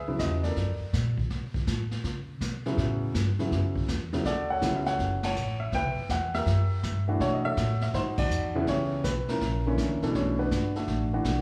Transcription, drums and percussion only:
0.19 kick, snare, hi-hat pedal
0.43 snare
0.56 brush sweep, kick, snare
0.93 kick, snare, hi-hat pedal
1.18 kick
1.30 brush sweep, kick, snare
1.54 kick
1.67 kick, snare, hi-hat pedal
1.91 snare
2.04 brush sweep, kick, snare
2.41 kick, snare, hi-hat pedal
2.65 snare
2.78 brush sweep, kick, snare
3.14 kick, snare, hi-hat pedal
3.39 snare
3.51 brush sweep, kick, snare
3.76 kick
3.88 kick, snare, hi-hat pedal
4.13 snare
4.25 brush sweep, kick, snare
4.62 kick, snare, hi-hat pedal
4.86 snare
4.99 brush sweep, kick, snare
5.23 snare, ride
5.36 hi-hat pedal
5.72 brush sweep, kick, snare
6.09 kick, snare, hi-hat pedal
6.34 snare
6.46 brush sweep, kick, snare
6.83 kick, snare, hi-hat pedal
7.20 brush sweep, kick, snare
7.57 kick, snare, hi-hat pedal
7.81 snare
7.94 brush sweep, kick, snare
8.18 kick, crash
8.31 hi-hat pedal
8.67 brush sweep, kick, snare
9.04 kick, snare, hi-hat pedal
9.28 snare
9.41 brush sweep, kick, snare
9.78 kick, snare, hi-hat pedal
10.02 snare
10.14 brush sweep, kick, snare
10.51 kick, snare, hi-hat pedal
10.75 snare
10.88 brush sweep, kick, snare
11.24 kick, snare, hi-hat pedal

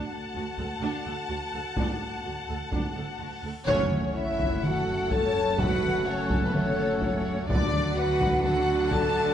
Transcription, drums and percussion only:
0.57 taiko
1.77 taiko
2.72 taiko
3.68 taiko
3.91 taiko mid
4.40 taiko
4.63 taiko mid
5.11 taiko
5.58 taiko
5.83 taiko mid
6.30 taiko
6.54 taiko mid
7.02 taiko
7.49 taiko
7.74 taiko mid
8.20 taiko
8.44 taiko mid
8.91 taiko

